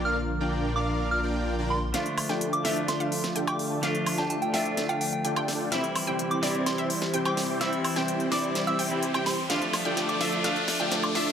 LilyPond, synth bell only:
\new Staff \with { instrumentName = "Synth bell" } { \time 4/4 \key d \minor \tempo 4 = 127 f'''16 r4 r16 d'''8. f'''16 r4 c'''8 | r4 r16 d'''16 r8 c'''8. r8 d'''16 r8 | r8. a''16 a''16 g''16 g''16 r8 g''16 g''16 g''16 r4 | r4 r16 d'''16 r8 c'''8. r8 d'''16 r8 |
e'''16 r4 r16 d'''8. e'''16 r4 c'''8 | r4 r16 d'''16 r4. r16 d'''16 r8 | }